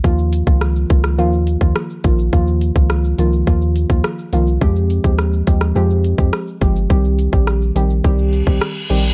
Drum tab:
HH |--x---x---x---x-|--x---x---x---x-|--x---x---x---x-|--x---x---x---x-|
SH |xxxxxxxxxxxxxxxx|xxxxxxxxxxxxxxxx|xxxxxxxxxxxxxxxx|xxxxxxxxxxxxxxxx|
SD |----r--r----r---|----r-------r---|----r--r----r---|----r-------r---|
BD |o--o--o----o--o-|o--o----o--o----|o--o--o----o--o-|o--o----o--o----|